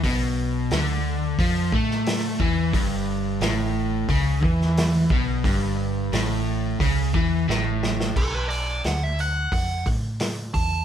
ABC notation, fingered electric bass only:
X:1
M:4/4
L:1/8
Q:1/4=88
K:Bm
V:1 name="Fingered electric bass" clef=bass
B,,,2 D,,2 ^E,, A,,2 =E,, | G,,,2 A,,,2 C,, E,,2 B,,, | G,,,2 A,,,2 C,, E,, A,,,2 | B,,,2 D,,2 ^E,, A,,2 =E,, |]